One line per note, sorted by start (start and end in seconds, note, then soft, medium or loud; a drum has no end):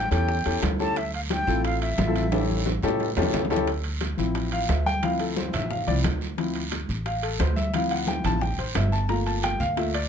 0.00 0.12 G5 loud
0.11 0.43 E2 medium
0.11 0.35 C#4 medium
0.11 0.35 E4 medium
0.11 0.35 G4 medium
0.11 0.36 A4 medium
0.11 0.60 G5 medium
0.11 high bongo soft
0.11 high conga soft
0.11 high timbale medium
0.11 short guiro medium
0.29 high bongo medium
0.29 high conga soft
0.29 long guiro medium
0.46 0.62 E2 medium
0.46 0.70 C#4 medium
0.46 0.70 E4 medium
0.46 0.70 G4 medium
0.46 0.70 A4 medium
0.46 high bongo soft
0.46 high conga soft
0.46 high timbale medium
0.62 1.42 D2 loud
0.62 high bongo medium
0.62 low bongo medium
0.62 high conga medium
0.62 high timbale medium
0.62 low timbale medium
0.62 short guiro medium
0.80 0.97 C#4 medium
0.80 0.97 E4 medium
0.80 0.97 G4 medium
0.80 0.97 A4 medium
0.80 0.99 A5 medium
0.80 high conga medium
0.80 short guiro medium
0.96 1.14 E5 medium
0.96 high bongo medium
0.96 high conga soft
0.96 high timbale medium
0.96 long guiro medium
1.14 1.21 F5 medium
1.14 high conga soft
1.14 high timbale medium
1.30 1.62 G5 medium
1.30 high bongo medium
1.30 high conga medium
1.30 high timbale loud
1.30 low timbale medium
1.30 short guiro medium
1.47 1.95 A1 medium
1.47 1.89 C4 medium
1.47 1.89 E4 medium
1.47 1.89 F4 medium
1.47 1.89 A4 medium
1.47 high conga soft
1.47 short guiro medium
1.65 1.81 F5 medium
1.65 high bongo medium
1.65 high conga soft
1.65 high timbale medium
1.65 long guiro medium
1.82 2.46 E5 medium
1.82 high conga soft
1.82 high timbale medium
1.98 2.77 A1 loud
1.98 high bongo medium
1.98 low bongo medium
1.98 high conga medium
1.98 low timbale medium
1.98 short guiro medium
2.07 2.25 C4 medium
2.07 2.25 E4 medium
2.07 2.25 F4 medium
2.07 2.25 A4 medium
2.16 high conga medium
2.16 high timbale medium
2.16 short guiro medium
2.32 2.68 C#4 medium
2.32 2.68 E4 medium
2.32 2.68 G4 medium
2.32 2.68 A4 medium
2.32 high bongo medium
2.32 high conga medium
2.32 high timbale medium
2.32 long guiro medium
2.50 high bongo soft
2.50 high conga medium
2.66 high bongo medium
2.66 high conga loud
2.66 high timbale medium
2.66 short guiro medium
2.83 3.14 A2 medium
2.83 3.07 C#4 loud
2.83 3.07 E4 medium
2.83 3.07 G4 medium
2.83 3.07 A4 loud
2.83 low conga medium
2.83 low timbale medium
2.83 short guiro medium
2.88 high bongo medium
3.00 low timbale medium
3.00 long guiro medium
3.17 3.32 E2 medium
3.17 3.41 C#4 loud
3.17 3.41 E4 medium
3.17 3.41 G4 medium
3.17 3.41 A4 loud
3.17 low conga medium
3.17 low timbale loud
3.22 low bongo loud
3.33 4.13 D2 medium
3.33 low bongo medium
3.33 low conga medium
3.33 low timbale medium
3.33 short guiro medium
3.45 low bongo medium
3.50 3.67 C#4 medium
3.50 3.68 E4 medium
3.50 3.68 G4 medium
3.50 3.68 A4 loud
3.50 low conga medium
3.50 low timbale medium
3.50 short guiro medium
3.56 low bongo medium
3.67 high bongo medium
3.67 high conga soft
3.67 high timbale medium
3.67 long guiro medium
3.84 high conga soft
3.84 high timbale medium
4.01 high bongo medium
4.01 high conga medium
4.01 high timbale medium
4.01 low timbale medium
4.01 short guiro medium
4.17 4.66 A1 medium
4.17 4.66 F3 medium
4.17 4.66 C4 medium
4.17 4.67 E4 medium
4.17 high conga soft
4.17 short guiro medium
4.35 high bongo medium
4.35 high timbale medium
4.35 long guiro medium
4.52 4.69 F5 medium
4.52 high conga soft
4.52 high timbale medium
4.69 5.48 D2 medium
4.69 4.86 E5 medium
4.69 high bongo medium
4.69 low bongo medium
4.69 high conga soft
4.69 high timbale medium
4.69 low timbale medium
4.69 short guiro medium
4.86 5.03 G5 loud
4.86 high conga medium
4.86 short guiro medium
5.02 5.86 F3 medium
5.02 5.86 C4 soft
5.02 5.86 E4 medium
5.02 5.20 F5 medium
5.02 high bongo medium
5.02 high conga soft
5.02 high timbale medium
5.02 long guiro medium
5.20 5.36 A4 medium
5.20 high bongo soft
5.20 high conga soft
5.20 high timbale medium
5.37 5.53 C5 medium
5.37 high bongo medium
5.37 high conga medium
5.37 low timbale medium
5.37 short guiro medium
5.53 5.85 A1 medium
5.53 5.65 E5 medium
5.53 high conga soft
5.53 low conga medium
5.53 high timbale loud
5.53 short guiro medium
5.66 5.69 E5 medium
5.70 5.87 F5 medium
5.70 high bongo medium
5.70 high conga soft
5.70 low conga medium
5.70 long guiro medium
5.87 6.03 C2 medium
5.87 6.03 F3 soft
5.87 6.03 C4 soft
5.87 6.03 E4 medium
5.87 5.98 D5 medium
5.87 high bongo soft
5.87 high conga soft
5.87 high timbale medium
6.04 6.83 D2 medium
6.04 high bongo medium
6.04 low bongo medium
6.04 high conga medium
6.04 high timbale loud
6.04 low timbale medium
6.04 short guiro medium
6.21 high bongo soft
6.21 high conga soft
6.21 short guiro medium
6.37 6.60 F3 medium
6.37 6.61 C4 medium
6.37 6.61 E4 medium
6.37 high bongo medium
6.37 high conga soft
6.37 high timbale medium
6.37 long guiro medium
6.55 high conga soft
6.55 high timbale medium
6.72 high bongo medium
6.72 high conga medium
6.72 high timbale loud
6.72 low timbale medium
6.72 short guiro medium
6.89 7.36 A1 medium
6.89 high conga soft
6.89 short guiro medium
7.06 7.22 F5 medium
7.06 high bongo medium
7.06 high conga soft
7.06 high timbale medium
7.06 long guiro medium
7.23 7.39 A4 medium
7.23 high conga soft
7.23 high timbale medium
7.39 8.19 D2 loud
7.39 7.56 C5 medium
7.39 high bongo medium
7.39 low bongo medium
7.39 high conga soft
7.39 high timbale medium
7.39 low timbale medium
7.39 short guiro medium
7.56 7.73 E5 medium
7.56 high conga medium
7.56 short guiro medium
7.73 8.23 F3 medium
7.73 8.24 C4 soft
7.73 8.24 E4 medium
7.73 7.91 F5 medium
7.73 high bongo medium
7.73 high conga soft
7.73 high timbale medium
7.73 long guiro medium
7.90 8.07 F#5 medium
7.90 high bongo soft
7.90 high conga soft
7.90 high timbale medium
8.07 8.24 G5 medium
8.07 high bongo medium
8.07 high conga medium
8.07 low timbale medium
8.07 short guiro medium
8.24 8.56 A1 medium
8.24 8.40 F3 medium
8.24 8.40 C4 soft
8.24 8.40 E4 medium
8.24 8.41 A5 loud
8.24 high conga soft
8.24 low conga medium
8.24 high timbale medium
8.24 short guiro medium
8.41 8.58 G5 medium
8.41 high bongo medium
8.41 high conga soft
8.41 low conga medium
8.41 long guiro medium
8.58 8.74 A1 medium
8.58 8.75 C5 medium
8.58 high bongo soft
8.58 high conga soft
8.58 high timbale medium
8.75 9.54 G1 loud
8.75 8.92 E5 medium
8.75 high bongo medium
8.75 low bongo medium
8.75 high conga medium
8.75 high timbale loud
8.75 low timbale medium
8.75 short guiro medium
8.92 9.09 A5 medium
8.92 high bongo soft
8.92 high conga soft
8.92 short guiro medium
9.09 9.57 A3 medium
9.09 9.58 A#3 soft
9.09 9.58 F4 medium
9.09 9.26 A#5 medium
9.09 high bongo medium
9.09 high timbale medium
9.09 long guiro medium
9.26 9.43 A5 medium
9.26 high conga soft
9.26 high timbale medium
9.43 9.60 G5 loud
9.43 high bongo medium
9.43 high conga medium
9.43 high timbale loud
9.43 low timbale medium
9.43 short guiro medium
9.60 10.07 D2 medium
9.60 9.77 F5 loud
9.60 high conga soft
9.60 short guiro medium
9.77 9.92 A3 soft
9.77 9.92 A#3 soft
9.77 9.92 F4 medium
9.77 9.94 E5 medium
9.77 high bongo medium
9.77 high conga soft
9.77 high timbale medium
9.77 long guiro medium
9.94 10.09 D5 medium
9.94 high conga soft
9.94 high timbale loud